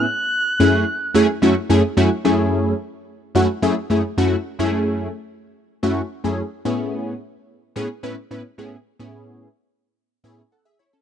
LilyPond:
<<
  \new Staff \with { instrumentName = "Analog synth lead" } { \time 4/4 \key fis \minor \tempo 4 = 109 fis'''2. r4 | r1 | r1 | r1 |
r1 | }
  \new Staff \with { instrumentName = "Analog polysynth" } { \time 4/4 \key fis \minor r4 <fis, a cis' e' gis'>8 r8 <fis, a cis' e' gis'>16 r16 <fis, a cis' e' fis'>16 r16 <fis, a cis' e' gis'>16 r16 <fis, a cis' e' fis'>16 r16 | <fis, a cis' e' gis'>4 r4 <fis, a cis' e' fis'>16 r16 <fis, a cis' e' gis'>16 r16 <fis, a cis' e' gis'>16 r16 <fis, a cis' e' fis'>16 r16 | r16 <fis, gis a cis' e' gis'>4 r4 r16 <fis, a cis' e' fis'>16 r8 <fis, a cis' e' gis'>16 r8 | <a, b cis' e' gis'>4 r4 <a, b cis' e' gis'>16 r16 <a, b cis' e' b'>16 r16 <a, b cis' e' b'>16 r16 <a, b cis' e' gis'>16 r16 |
r16 <a, b cis' e' gis'>4 r4 r16 <a, b cis' e' gis'>16 r16 <a' fis''>16 <gis' e''>16 <e' cis''>16 <cis' a'>16 | }
>>